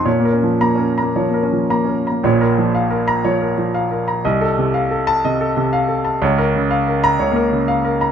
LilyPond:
<<
  \new Staff \with { instrumentName = "Grand piano" } { \time 4/4 \key bes \minor \tempo 4 = 121 << { r4 bes''8 r2 r8 | r4 \tuplet 3/2 { r4 bes''8 } r2 | r4 \tuplet 3/2 { r4 a''8 } r2 | r4 \tuplet 3/2 { r4 bes''8 } r2 | } \\ { \tuplet 3/2 { des''8 bes'8 f8~ f8 bes'8 bes''8 des''8 bes'8 f8 bes''8 bes'8 bes''8 } | \tuplet 3/2 { des''8 bes'8 f8 f''8 bes'4 des''8 bes'8 f8 f''8 bes'8 bes''8 } | \tuplet 3/2 { ees''8 a'8 c8 f''8 a'4 ees''8 a'8 c8 f''8 a'8 a''8 } | \tuplet 3/2 { des''8 bes'8 des8 f''8 bes'4 des''8 bes'8 des8 f''8 bes'8 bes''8 } | } >> }
  \new Staff \with { instrumentName = "Grand piano" } { \time 4/4 \key bes \minor bes,16 bes16 des'8 bes16 des'8 bes16 f16 bes16 des'8 bes16 des'8 bes16 | <bes,, bes,>2 f8 r4. | c,2 c8 r4. | des,2 des,16 bes8 r4 r16 | }
>>